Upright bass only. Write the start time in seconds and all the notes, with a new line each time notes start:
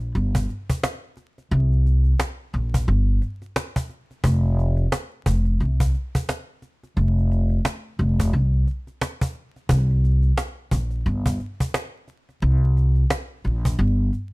Already playing: A#1
0.15 G1
1.51 C2
2.54 A#1
2.88 G1
4.24 F1
5.26 F1
5.60 C2
6.97 F1
7.99 F1
8.33 C2
9.69 C2
10.72 A#1
11.06 G1
12.42 C2
13.45 A#1
13.79 G1